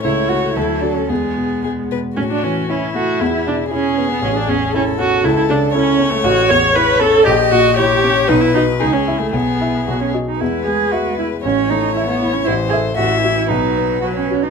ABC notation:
X:1
M:2/4
L:1/16
Q:1/4=116
K:A
V:1 name="Violin"
c4 A4 | G4 G2 B2 | F4 E4- | E4 G4- |
G4 A4 | A4 c4- | [K:E] c8 | d4 c4 |
B4 G4 | G6 z2 | B8 | c8 |
=c4 e4 | B6 z2 |]
V:2 name="Cello"
E2 F2 E2 D C | B,6 z2 | C D C2 C2 F2 | E E D2 C3 B, |
C D C2 C2 F2 | E E D2 C3 A, | [K:E] F2 c2 B2 A2 | =G2 F2 G4 |
D E D2 D C2 A, | B,4 F C2 D | E2 G2 F2 E2 | C2 D2 E B,2 C |
E2 G2 F2 E2 | D4 F C2 D |]
V:3 name="Grand piano"
C,,2 [EA]2 D,,2 [FA]2 | E,,2 B,,2 G,2 B,,2 | A,,2 E,2 E2 A,2 | E,,2 B,,2 [EG]2 B,2 |
A,,,2 E,,2 [EA]2 C2 | C,,2 C,2 [EA]2 C2 | [K:E] A,,,2 E,,2 [Ec]2 C2 | ^A,,,2 ^A,,2 [Ec]2 C2 |
B,,,2 [Fd]2 C,,2 [Ee]2 | B,,,2 [Ee]2 B,,,2 [Fd]2 | E,,2 G,2 e2 E2 | A,,,2 A,2 e2 E2 |
A,,,2 [Ae]2 A,,,2 [Fe]2 | B,,,2 B,2 B2 F2 |]
V:4 name="Viola"
A,4 F,4 | G,6 z2 | C D C2 C2 F2 | E E D2 C3 B, |
C D C2 C2 F2 | E E D2 C3 A, | [K:E] F2 c2 B2 A2 | =G2 F2 G4 |
D E D2 D C2 A, | B,6 z2 | G,8 | E,8 |
E,4 E,4 | F,4 F,2 z2 |]